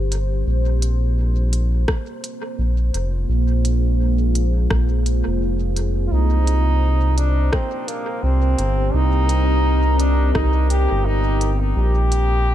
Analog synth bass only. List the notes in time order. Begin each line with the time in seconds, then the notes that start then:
Already playing: G1
0.47 A#1
2.59 A#1
2.94 F1
3.29 A#1
4.70 A#1
5.27 F1
6.12 C2
8.23 C2
8.59 G1
8.94 C2
10.35 C2
10.91 G1
11.76 A#1